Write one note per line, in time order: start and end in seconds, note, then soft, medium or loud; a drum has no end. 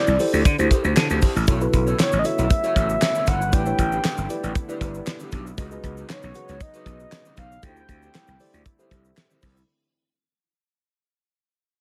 0.00 0.46 D5 loud
0.07 0.16 C2 medium
0.07 muted clean electric guitar stroke soft
0.07 shaker medium
0.19 0.40 E4 loud
0.19 0.40 G4 loud
0.19 0.41 A4 loud
0.19 0.41 C5 loud
0.19 muted clean electric guitar stroke soft
0.19 open hi-hat medium
0.19 shaker soft
0.33 0.42 D2 medium
0.33 0.44 E4 medium
0.33 0.43 G4 medium
0.33 0.43 D5 medium
0.33 shaker medium
0.45 0.55 D3 loud
0.45 muted clean electric guitar stroke soft
0.45 kick loud
0.45 closed hi-hat medium
0.45 shaker medium
0.58 0.68 D2 loud
0.58 1.07 E4 medium
0.58 0.69 E4 medium
0.58 1.07 G4 medium
0.58 0.69 G4 medium
0.58 1.07 A4 medium
0.58 0.69 C5 medium
0.58 1.07 C5 loud
0.58 closed hi-hat soft
0.58 shaker medium
0.71 0.85 E4 medium
0.71 0.84 G4 medium
0.71 0.83 C5 medium
0.71 kick medium
0.71 closed hi-hat medium
0.71 shaker soft
0.84 0.93 D2 medium
0.84 muted clean electric guitar stroke medium
0.84 shaker medium
0.96 1.06 D3 loud
0.96 1.44 A5 medium
0.96 muted clean electric guitar stroke soft
0.96 snare loud
0.96 clap loud
0.96 closed hi-hat medium
0.96 shaker medium
1.10 1.19 D2 medium
1.10 1.21 E4 medium
1.10 1.21 G4 medium
1.10 1.20 C5 medium
1.10 shaker medium
1.22 1.36 E4 medium
1.22 1.35 G4 loud
1.22 1.34 C5 medium
1.22 kick loud
1.22 open hi-hat medium
1.22 shaker medium
1.36 1.45 A1 loud
1.36 muted clean electric guitar stroke soft
1.36 shaker medium
1.47 1.66 B1 loud
1.47 3.51 C#3 medium
1.47 3.51 F#3 medium
1.47 5.54 A3 medium
1.47 3.51 B3 medium
1.47 1.55 E4 medium
1.47 1.62 E4 medium
1.47 5.54 E4 medium
1.47 1.55 F#4 medium
1.47 1.55 A4 medium
1.47 1.61 A4 medium
1.47 1.55 C#5 medium
1.47 1.60 C#5 loud
1.47 kick loud
1.47 closed hi-hat loud
1.47 shaker medium
1.61 1.95 E4 medium
1.61 1.95 F#4 medium
1.61 1.95 A4 medium
1.61 1.95 B4 loud
1.61 muted clean electric guitar stroke soft
1.61 shaker medium
1.73 1.92 B1 loud
1.73 muted clean electric guitar stroke soft
1.73 kick medium
1.73 closed hi-hat medium
1.73 shaker medium
1.87 1.98 E4 medium
1.87 1.97 A4 medium
1.87 1.97 C#5 medium
1.87 shaker medium
1.99 2.13 E4 medium
1.99 2.13 A4 loud
1.99 2.21 C#5 medium
1.99 2.12 C#5 loud
1.99 snare loud
1.99 clap medium
1.99 closed hi-hat loud
1.99 shaker medium
2.12 2.22 A1 medium
2.12 muted clean electric guitar stroke medium
2.12 shaker medium
2.19 2.27 D#5 medium
2.24 2.45 E4 medium
2.24 2.45 F#4 medium
2.24 2.46 A4 medium
2.24 2.46 C#5 loud
2.24 3.30 E5 loud
2.24 muted clean electric guitar stroke soft
2.24 closed hi-hat medium
2.24 shaker soft
2.38 2.47 B1 medium
2.38 2.49 E4 medium
2.38 2.49 A4 medium
2.38 2.48 E5 medium
2.38 closed hi-hat soft
2.38 shaker medium
2.50 muted clean electric guitar stroke medium
2.50 kick loud
2.50 closed hi-hat medium
2.50 shaker medium
2.63 3.12 E4 medium
2.63 2.75 E4 medium
2.63 3.12 F#4 medium
2.63 3.12 A4 medium
2.63 2.75 A4 loud
2.63 2.76 C#5 loud
2.63 3.12 C#5 medium
2.63 closed hi-hat soft
2.63 shaker soft
2.76 2.95 A1 loud
2.76 2.87 E4 medium
2.76 2.88 A4 medium
2.76 2.88 C#5 medium
2.76 kick loud
2.76 closed hi-hat medium
2.76 shaker soft
2.89 muted clean electric guitar stroke soft
2.89 shaker medium
3.01 muted clean electric guitar stroke soft
3.01 snare loud
3.01 clap medium
3.01 closed hi-hat loud
3.01 shaker medium
3.15 3.26 E4 medium
3.15 3.26 A4 medium
3.15 3.25 C#5 medium
3.15 shaker medium
3.26 3.53 G1 medium
3.26 3.42 E4 medium
3.26 3.40 A4 medium
3.26 3.40 C#5 medium
3.26 3.55 F#5 loud
3.26 kick loud
3.26 closed hi-hat medium
3.26 shaker medium
3.41 muted clean electric guitar stroke soft
3.41 shaker medium
3.52 3.72 A1 loud
3.52 5.56 D3 medium
3.52 5.56 G3 medium
3.52 7.59 B3 medium
3.52 3.67 D4 medium
3.52 3.60 E4 medium
3.52 3.60 G4 medium
3.52 3.66 G4 medium
3.52 3.60 B4 medium
3.52 3.65 B4 medium
3.52 3.60 D5 medium
3.52 4.56 G5 loud
3.52 kick loud
3.52 closed hi-hat medium
3.52 shaker medium
3.66 4.00 E4 medium
3.66 4.00 G4 medium
3.66 4.00 B4 medium
3.66 4.01 C#5 medium
3.66 muted clean electric guitar stroke soft
3.66 shaker medium
3.78 3.97 A1 loud
3.78 muted clean electric guitar stroke soft
3.78 kick medium
3.78 closed hi-hat medium
3.78 shaker medium
3.92 4.03 D4 medium
3.92 4.02 G4 medium
3.92 4.02 B4 medium
3.92 shaker soft
4.04 4.18 D4 medium
4.04 4.17 G4 loud
4.04 4.16 B4 loud
4.04 snare loud
4.04 clap loud
4.04 closed hi-hat loud
4.04 shaker medium
4.17 4.27 G1 medium
4.17 muted clean electric guitar stroke medium
4.17 shaker medium
4.29 4.50 E4 medium
4.29 4.51 G4 loud
4.29 4.51 B4 medium
4.29 4.51 D5 loud
4.29 muted clean electric guitar stroke soft
4.29 closed hi-hat medium
4.29 shaker medium
4.43 4.52 A1 medium
4.43 4.54 D4 medium
4.43 4.54 G4 medium
4.43 4.53 C#5 medium
4.43 closed hi-hat medium
4.43 shaker medium
4.55 muted clean electric guitar stroke soft
4.55 kick loud
4.55 closed hi-hat medium
4.55 shaker medium
4.68 4.79 D4 medium
4.68 5.17 E4 loud
4.68 5.17 G4 medium
4.68 4.80 G4 medium
4.68 4.81 B4 medium
4.68 5.17 B4 medium
4.68 5.17 D5 loud
4.68 shaker medium
4.81 5.00 G1 loud
4.81 4.92 D4 medium
4.81 4.93 G4 medium
4.81 4.93 B4 medium
4.81 kick medium
4.81 closed hi-hat medium
4.81 shaker medium
4.94 muted clean electric guitar stroke soft
4.94 shaker medium
5.06 muted clean electric guitar stroke soft
5.06 snare loud
5.06 clap loud
5.06 closed hi-hat loud
5.06 shaker medium
5.20 5.31 D4 medium
5.20 5.31 G4 medium
5.20 5.30 B4 medium
5.20 shaker medium
5.32 5.51 B1 medium
5.32 5.47 D4 medium
5.32 5.45 G4 medium
5.32 5.44 B4 loud
5.32 kick loud
5.32 closed hi-hat medium
5.32 shaker medium
5.46 muted clean electric guitar stroke medium
5.46 shaker medium
5.58 5.77 C#2 loud
5.58 7.61 C#3 medium
5.58 7.61 F#3 medium
5.58 7.61 G#3 medium
5.58 5.72 D#4 medium
5.58 7.61 D#4 medium
5.58 5.65 F#4 medium
5.58 5.71 F#4 medium
5.58 5.65 G#4 medium
5.58 5.65 B4 medium
5.58 5.70 B4 loud
5.58 5.65 D#5 loud
5.58 kick loud
5.58 closed hi-hat loud
5.58 shaker medium
5.71 6.05 F#4 medium
5.71 6.05 G#4 medium
5.71 6.05 B4 medium
5.71 6.06 D#5 loud
5.71 muted clean electric guitar stroke medium
5.71 shaker medium
5.83 6.02 C#2 loud
5.83 muted clean electric guitar stroke soft
5.83 kick medium
5.83 closed hi-hat medium
5.83 shaker soft
5.97 6.08 D#4 medium
5.97 6.07 F#4 medium
5.97 6.07 B4 medium
5.97 shaker medium
6.09 6.24 D#4 medium
6.09 6.22 F#4 medium
6.09 6.22 B4 medium
6.09 6.63 C#5 medium
6.09 snare loud
6.09 clap loud
6.09 closed hi-hat loud
6.09 shaker medium
6.22 6.32 B1 medium
6.22 muted clean electric guitar stroke medium
6.22 shaker medium
6.34 6.56 F#4 loud
6.34 6.56 G#4 medium
6.34 6.56 B4 medium
6.34 6.56 F#5 medium
6.34 muted clean electric guitar stroke soft
6.34 closed hi-hat medium
6.34 shaker soft
6.48 6.57 C#2 medium
6.48 6.59 D#4 medium
6.48 6.59 F#4 medium
6.48 6.58 C#5 medium
6.48 closed hi-hat soft
6.48 shaker medium
6.60 7.38 D#5 loud
6.60 muted clean electric guitar stroke soft
6.60 kick loud
6.60 closed hi-hat medium
6.60 shaker medium
6.74 6.85 D#4 medium
6.74 7.22 F#4 medium
6.74 6.85 F#4 loud
6.74 7.22 G#4 medium
6.74 6.86 B4 loud
6.74 7.22 B4 medium
6.74 7.22 D#5 medium
6.74 closed hi-hat medium
6.74 shaker medium
6.86 7.05 B1 loud
6.86 6.97 D#4 medium
6.86 6.98 F#4 medium
6.86 6.98 B4 medium
6.86 kick loud
6.86 closed hi-hat medium
6.86 shaker medium
7.00 muted clean electric guitar stroke soft
7.00 shaker medium
7.12 muted clean electric guitar stroke soft
7.12 snare loud
7.12 clap medium
7.12 closed hi-hat medium
7.12 shaker medium
7.25 7.36 D#4 medium
7.25 7.36 F#4 medium
7.25 7.36 B4 medium
7.25 shaker medium
7.37 7.56 B1 medium
7.37 7.52 D#4 medium
7.37 7.51 F#4 loud
7.37 7.50 B4 loud
7.37 7.62 F5 medium
7.37 kick loud
7.37 closed hi-hat medium
7.37 shaker medium
7.51 muted clean electric guitar stroke soft
7.51 shaker medium
7.63 7.82 D2 loud
7.63 9.66 D3 medium
7.63 9.66 G3 medium
7.63 9.66 A3 medium
7.63 9.66 C4 medium
7.63 9.66 E4 medium
7.63 7.78 E4 medium
7.63 7.70 G4 medium
7.63 7.77 G4 medium
7.63 7.70 A4 medium
7.63 7.70 C5 medium
7.63 7.76 C5 medium
7.63 7.71 E5 medium
7.63 8.62 G5 loud
7.63 kick loud
7.63 closed hi-hat loud
7.63 shaker medium
7.76 8.10 G4 medium
7.76 8.11 A4 medium
7.76 8.11 C5 medium
7.76 8.11 G5 medium
7.76 muted clean electric guitar stroke soft
7.76 shaker medium
7.89 8.07 D2 loud
7.89 muted clean electric guitar stroke soft
7.89 kick medium
7.89 closed hi-hat medium
7.89 shaker medium
8.02 8.13 E4 medium
8.02 8.13 G4 medium
8.02 8.13 C5 medium
8.02 shaker medium
8.14 8.29 E4 medium
8.14 8.28 G4 medium
8.14 8.27 C5 loud
8.14 snare loud
8.14 clap medium
8.14 closed hi-hat loud
8.14 shaker medium
8.27 8.37 C2 medium
8.27 muted clean electric guitar stroke soft
8.27 shaker medium
8.40 8.61 G4 loud
8.40 8.61 A4 medium
8.40 8.61 C5 loud
8.40 8.61 D5 loud
8.40 muted clean electric guitar stroke soft
8.40 open hi-hat medium
8.40 shaker soft
8.54 8.62 D2 medium
8.54 8.64 E4 medium
8.54 8.64 G4 medium
8.54 8.64 D5 medium
8.54 closed hi-hat soft
8.54 shaker medium
8.66 muted clean electric guitar stroke soft
8.66 kick loud
8.66 closed hi-hat medium
8.66 shaker medium
8.79 8.90 E4 medium
8.79 9.27 G4 medium
8.79 8.90 G4 medium
8.79 9.27 A4 medium
8.79 8.91 C5 medium
8.79 9.27 C5 medium
8.79 9.27 E5 medium
8.79 shaker medium
8.91 9.10 C2 medium
8.91 9.03 E4 medium
8.91 9.03 G4 medium
8.91 9.03 C5 medium
8.91 kick loud
8.91 closed hi-hat medium
8.91 shaker medium
9.05 muted clean electric guitar stroke soft
9.05 shaker medium
9.17 muted clean electric guitar stroke soft
9.17 snare loud
9.17 clap medium
9.17 closed hi-hat medium
9.17 shaker medium
9.30 9.41 E4 medium
9.30 9.41 G4 medium
9.30 9.40 C5 medium
9.30 shaker medium
9.42 9.61 C2 loud
9.42 9.57 E4 loud
9.42 9.56 G4 medium
9.42 9.55 C5 loud
9.42 kick loud
9.42 open hi-hat medium
9.42 shaker medium
9.56 muted clean electric guitar stroke medium
9.56 shaker medium